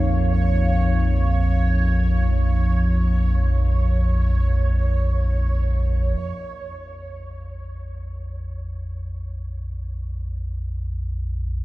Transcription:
0, 0, Header, 1, 4, 480
1, 0, Start_track
1, 0, Key_signature, -5, "minor"
1, 0, Tempo, 500000
1, 11180, End_track
2, 0, Start_track
2, 0, Title_t, "Synth texture"
2, 0, Program_c, 0, 99
2, 0, Note_on_c, 0, 73, 74
2, 5944, Note_off_c, 0, 73, 0
2, 11180, End_track
3, 0, Start_track
3, 0, Title_t, "Analog synth pad"
3, 0, Program_c, 1, 89
3, 0, Note_on_c, 1, 58, 67
3, 0, Note_on_c, 1, 63, 67
3, 0, Note_on_c, 1, 70, 79
3, 0, Note_on_c, 1, 77, 77
3, 5923, Note_off_c, 1, 77, 0
3, 5925, Note_off_c, 1, 70, 0
3, 5935, Note_off_c, 1, 58, 0
3, 5936, Note_off_c, 1, 63, 0
3, 11180, End_track
4, 0, Start_track
4, 0, Title_t, "Synth drone"
4, 0, Program_c, 2, 95
4, 0, Note_on_c, 2, 34, 67
4, 0, Note_on_c, 2, 41, 66
4, 5910, Note_off_c, 2, 41, 0
4, 5914, Note_off_c, 2, 34, 0
4, 5922, Note_on_c, 2, 41, 69
4, 5926, Note_on_c, 2, 34, 73
4, 11180, Note_off_c, 2, 34, 0
4, 11180, Note_off_c, 2, 41, 0
4, 11180, End_track
0, 0, End_of_file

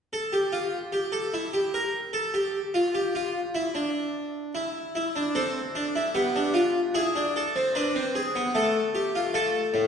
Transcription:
0, 0, Header, 1, 2, 480
1, 0, Start_track
1, 0, Tempo, 802139
1, 1275, Time_signature, 3, 2, 24, 8
1, 5907, End_track
2, 0, Start_track
2, 0, Title_t, "Harpsichord"
2, 0, Program_c, 0, 6
2, 78, Note_on_c, 0, 69, 59
2, 192, Note_off_c, 0, 69, 0
2, 195, Note_on_c, 0, 67, 63
2, 311, Note_off_c, 0, 67, 0
2, 313, Note_on_c, 0, 65, 63
2, 464, Note_off_c, 0, 65, 0
2, 553, Note_on_c, 0, 67, 61
2, 671, Note_on_c, 0, 69, 63
2, 672, Note_off_c, 0, 67, 0
2, 790, Note_off_c, 0, 69, 0
2, 799, Note_on_c, 0, 64, 65
2, 914, Note_off_c, 0, 64, 0
2, 918, Note_on_c, 0, 67, 67
2, 1033, Note_off_c, 0, 67, 0
2, 1042, Note_on_c, 0, 70, 65
2, 1188, Note_off_c, 0, 70, 0
2, 1276, Note_on_c, 0, 69, 75
2, 1392, Note_off_c, 0, 69, 0
2, 1400, Note_on_c, 0, 67, 67
2, 1547, Note_off_c, 0, 67, 0
2, 1641, Note_on_c, 0, 65, 70
2, 1754, Note_off_c, 0, 65, 0
2, 1762, Note_on_c, 0, 67, 73
2, 1874, Note_off_c, 0, 67, 0
2, 1885, Note_on_c, 0, 65, 65
2, 2030, Note_off_c, 0, 65, 0
2, 2122, Note_on_c, 0, 64, 70
2, 2234, Note_off_c, 0, 64, 0
2, 2243, Note_on_c, 0, 62, 67
2, 2705, Note_off_c, 0, 62, 0
2, 2721, Note_on_c, 0, 64, 69
2, 2957, Note_off_c, 0, 64, 0
2, 2964, Note_on_c, 0, 64, 69
2, 3077, Note_off_c, 0, 64, 0
2, 3086, Note_on_c, 0, 62, 74
2, 3198, Note_off_c, 0, 62, 0
2, 3202, Note_on_c, 0, 60, 75
2, 3203, Note_on_c, 0, 69, 68
2, 3349, Note_off_c, 0, 60, 0
2, 3442, Note_on_c, 0, 62, 76
2, 3556, Note_off_c, 0, 62, 0
2, 3563, Note_on_c, 0, 64, 76
2, 3666, Note_off_c, 0, 69, 0
2, 3677, Note_off_c, 0, 64, 0
2, 3678, Note_on_c, 0, 59, 79
2, 3678, Note_on_c, 0, 67, 64
2, 3794, Note_off_c, 0, 59, 0
2, 3805, Note_on_c, 0, 62, 78
2, 3913, Note_on_c, 0, 65, 74
2, 3918, Note_off_c, 0, 62, 0
2, 4064, Note_off_c, 0, 65, 0
2, 4146, Note_off_c, 0, 67, 0
2, 4156, Note_on_c, 0, 68, 67
2, 4157, Note_on_c, 0, 64, 89
2, 4275, Note_off_c, 0, 64, 0
2, 4281, Note_on_c, 0, 62, 77
2, 4306, Note_off_c, 0, 68, 0
2, 4405, Note_on_c, 0, 69, 65
2, 4429, Note_off_c, 0, 62, 0
2, 4522, Note_on_c, 0, 60, 78
2, 4551, Note_off_c, 0, 69, 0
2, 4636, Note_off_c, 0, 60, 0
2, 4639, Note_on_c, 0, 71, 70
2, 4640, Note_on_c, 0, 62, 85
2, 4754, Note_off_c, 0, 62, 0
2, 4760, Note_on_c, 0, 60, 82
2, 4786, Note_off_c, 0, 71, 0
2, 4878, Note_on_c, 0, 68, 66
2, 4906, Note_off_c, 0, 60, 0
2, 4999, Note_on_c, 0, 59, 83
2, 5025, Note_off_c, 0, 68, 0
2, 5112, Note_off_c, 0, 59, 0
2, 5114, Note_on_c, 0, 57, 82
2, 5115, Note_on_c, 0, 69, 70
2, 5262, Note_off_c, 0, 69, 0
2, 5354, Note_on_c, 0, 67, 67
2, 5468, Note_off_c, 0, 67, 0
2, 5478, Note_on_c, 0, 65, 67
2, 5576, Note_off_c, 0, 57, 0
2, 5590, Note_off_c, 0, 65, 0
2, 5590, Note_on_c, 0, 57, 74
2, 5591, Note_on_c, 0, 69, 74
2, 5827, Note_on_c, 0, 45, 77
2, 5907, Note_off_c, 0, 45, 0
2, 5907, Note_off_c, 0, 57, 0
2, 5907, Note_off_c, 0, 69, 0
2, 5907, End_track
0, 0, End_of_file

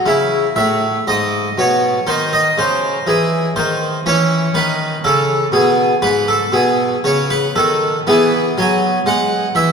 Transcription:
0, 0, Header, 1, 2, 480
1, 0, Start_track
1, 0, Key_signature, 4, "minor"
1, 0, Tempo, 1000000
1, 23, Time_signature, 4, 2, 24, 8
1, 4666, End_track
2, 0, Start_track
2, 0, Title_t, "Harpsichord"
2, 0, Program_c, 0, 6
2, 27, Note_on_c, 0, 49, 43
2, 30, Note_on_c, 0, 64, 62
2, 220, Note_off_c, 0, 49, 0
2, 269, Note_off_c, 0, 64, 0
2, 269, Note_on_c, 0, 76, 60
2, 270, Note_on_c, 0, 45, 40
2, 462, Note_off_c, 0, 45, 0
2, 511, Note_off_c, 0, 76, 0
2, 516, Note_on_c, 0, 44, 42
2, 518, Note_on_c, 0, 75, 66
2, 708, Note_off_c, 0, 44, 0
2, 756, Note_on_c, 0, 47, 47
2, 757, Note_off_c, 0, 75, 0
2, 762, Note_on_c, 0, 73, 62
2, 949, Note_off_c, 0, 47, 0
2, 992, Note_on_c, 0, 51, 46
2, 994, Note_on_c, 0, 63, 30
2, 996, Note_on_c, 0, 72, 67
2, 1000, Note_off_c, 0, 73, 0
2, 1115, Note_off_c, 0, 72, 0
2, 1119, Note_on_c, 0, 75, 69
2, 1184, Note_off_c, 0, 51, 0
2, 1235, Note_off_c, 0, 75, 0
2, 1237, Note_on_c, 0, 49, 44
2, 1242, Note_on_c, 0, 72, 75
2, 1426, Note_off_c, 0, 49, 0
2, 1472, Note_on_c, 0, 52, 43
2, 1475, Note_on_c, 0, 68, 57
2, 1476, Note_off_c, 0, 72, 0
2, 1665, Note_off_c, 0, 52, 0
2, 1678, Note_off_c, 0, 68, 0
2, 1710, Note_on_c, 0, 51, 42
2, 1710, Note_on_c, 0, 72, 64
2, 1903, Note_off_c, 0, 51, 0
2, 1915, Note_off_c, 0, 72, 0
2, 1932, Note_off_c, 0, 63, 0
2, 1950, Note_on_c, 0, 52, 45
2, 1950, Note_on_c, 0, 61, 29
2, 1952, Note_on_c, 0, 73, 69
2, 2140, Note_off_c, 0, 52, 0
2, 2153, Note_off_c, 0, 73, 0
2, 2181, Note_on_c, 0, 51, 38
2, 2184, Note_on_c, 0, 71, 71
2, 2372, Note_off_c, 0, 51, 0
2, 2386, Note_off_c, 0, 71, 0
2, 2421, Note_on_c, 0, 49, 47
2, 2422, Note_on_c, 0, 69, 62
2, 2609, Note_off_c, 0, 49, 0
2, 2622, Note_off_c, 0, 69, 0
2, 2651, Note_on_c, 0, 47, 47
2, 2655, Note_on_c, 0, 68, 65
2, 2843, Note_off_c, 0, 47, 0
2, 2858, Note_off_c, 0, 68, 0
2, 2891, Note_on_c, 0, 44, 44
2, 2891, Note_on_c, 0, 71, 68
2, 3014, Note_off_c, 0, 71, 0
2, 3016, Note_on_c, 0, 69, 48
2, 3087, Note_off_c, 0, 44, 0
2, 3131, Note_on_c, 0, 47, 48
2, 3136, Note_on_c, 0, 68, 62
2, 3138, Note_off_c, 0, 69, 0
2, 3332, Note_off_c, 0, 47, 0
2, 3347, Note_off_c, 0, 68, 0
2, 3381, Note_on_c, 0, 49, 37
2, 3384, Note_on_c, 0, 73, 64
2, 3506, Note_on_c, 0, 71, 80
2, 3508, Note_off_c, 0, 73, 0
2, 3578, Note_off_c, 0, 49, 0
2, 3627, Note_on_c, 0, 69, 59
2, 3628, Note_off_c, 0, 71, 0
2, 3628, Note_on_c, 0, 51, 38
2, 3821, Note_off_c, 0, 51, 0
2, 3833, Note_off_c, 0, 69, 0
2, 3850, Note_off_c, 0, 61, 0
2, 3874, Note_on_c, 0, 52, 50
2, 3875, Note_on_c, 0, 59, 34
2, 3878, Note_on_c, 0, 68, 70
2, 4064, Note_off_c, 0, 52, 0
2, 4114, Note_off_c, 0, 68, 0
2, 4117, Note_on_c, 0, 54, 45
2, 4121, Note_on_c, 0, 80, 71
2, 4305, Note_off_c, 0, 54, 0
2, 4319, Note_off_c, 0, 80, 0
2, 4350, Note_on_c, 0, 56, 43
2, 4354, Note_on_c, 0, 78, 73
2, 4540, Note_off_c, 0, 56, 0
2, 4585, Note_on_c, 0, 52, 47
2, 4588, Note_on_c, 0, 76, 72
2, 4589, Note_off_c, 0, 78, 0
2, 4666, Note_off_c, 0, 52, 0
2, 4666, Note_off_c, 0, 59, 0
2, 4666, Note_off_c, 0, 76, 0
2, 4666, End_track
0, 0, End_of_file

